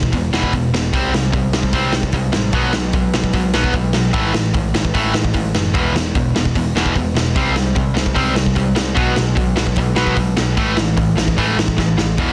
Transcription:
Already playing: E2 B2
0.03 kick
0.12 E1 E2 B2, kick, open hi-hat
0.32 E1 E2 B2 E3, snare
0.43 kick
0.53 E1 E2 B2, kick, open hi-hat
0.73 E1 E2 B2, snare
0.93 C2 C3 G3 C4, kick, open hi-hat
1.13 C2 C3 G3, snare
1.32 C2 C3 G3, kick, open hi-hat
1.53 C2 C3 G3, snare
1.63 kick
1.73 C2 C3 G3 C4, kick, open hi-hat
1.93 C2 C3 G3, snare
2.03 kick
2.12 C2 C3 G3, kick, open hi-hat
2.32 A1 C3 G3, snare
2.53 B1 B2 F#3 B3, kick, open hi-hat
2.73 B1 B2 F#3, snare
2.93 B1 B2 F#3, kick, open hi-hat
3.14 B1 B2 F#3, snare
3.24 kick
3.33 B1 B2 F#3, kick, open hi-hat
3.54 B1 B2 F#3 B3, snare
3.64 kick
3.73 B1 B2 F#3, kick, open hi-hat
3.93 B1 B2 F#3, snare
4.13 A1 A2 E3 A3, kick, open hi-hat
4.33 A1 A2 E3, snare
4.54 A1 A2 E3, kick, open hi-hat
4.74 A1 A2 E3, snare
4.85 kick
4.94 A1 A2 E3 A3, kick, open hi-hat
5.14 A1 A2 E3, snare
5.25 kick
5.33 A1 A2 E3, kick, open hi-hat
5.54 F#1 A2 E3, snare
5.74 E1 E2 B2 E3, kick, open hi-hat
5.93 E1 E2 B2, snare
6.15 E1 E2 B2, kick, open hi-hat
6.35 E1 E2 B2, snare
6.45 kick
6.55 E1 E2 B2, kick, open hi-hat
6.75 E1 E2 B2 E3, snare
6.86 kick
6.96 E1 E2 B2, kick, open hi-hat
7.15 E1 E2 B2, snare
7.36 C2 C3 G3 C4, kick, open hi-hat
7.55 C2 C3 G3, snare
7.75 C2 C3 G3, kick, open hi-hat
7.94 C2 C3 G3, snare
8.06 kick
8.15 C2 C3 G3 C4, kick, open hi-hat
8.35 C2 C3 G3, snare
8.46 kick
8.55 C2 C3 G3, kick, open hi-hat
8.75 C2 C3 G3, snare
8.95 B1 B2 F#3 B3, kick, open hi-hat
9.15 B1 B2 F#3, snare
9.35 B1 B2 F#3, kick, open hi-hat
9.56 B1 B2 F#3, snare
9.67 kick
9.76 B1 B2 F#3, kick, open hi-hat
9.96 B1 B2 F#3 B3, snare
10.07 kick
10.16 B1 B2 F#3, kick, open hi-hat
10.37 B1 B2 F#3, snare
10.57 A1 A2 E3 A3, kick, open hi-hat
10.77 A1 A2 E3, snare
10.97 A1 A2 E3, kick, open hi-hat
11.17 A1 A2 E3, snare
11.28 kick
11.38 A1 A2 E3 A3, kick, open hi-hat
11.57 A1 A2 E3, snare
11.68 kick
11.78 A1 A2 E3, kick, snare
11.98 A1 A2 E3, snare
12.18 E1 E2 B2 E3, kick, open hi-hat

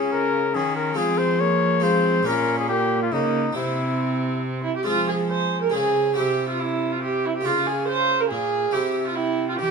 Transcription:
Already playing: C#3 G#3 C#4 F4 G#4
0.12 A#4
0.54 D#3 C#4 G#4
0.76 A#4
0.94 F3 G#3 C4 F4 G#4
1.18 C5
1.40 A#3 C#5
1.80 G#3 C4 F4 C5
2.23 A#2 A#3 C#4 F4 A#4
2.27 A#2 C#4
2.59 G#4
2.69 A#3 G4
3.03 F4
3.11 C#3 A#3 D#4
3.53 C3 C4 E4
4.63 E4
4.76 G4
4.83 F3 G#3 C4 F4
4.88 G#5
5.08 G#4
5.30 C5 G#5
5.62 A#4
5.70 C#3 G#3 C4 G#4
6.14 C3 C4 E4 G4 E5
6.49 F4
6.60 E4
6.92 F4
7.03 G4
7.25 E4
7.36 G4
7.41 C#3 A#3 F4
7.45 C#3 F4 F5
7.67 G#4
7.88 C5
8.20 A#4
8.30 A#2 G#4 F5
8.71 C3 C4 E4 G4 E5
9.07 F4
9.15 E4 G5
9.49 F4
9.59 E3 G4 G5

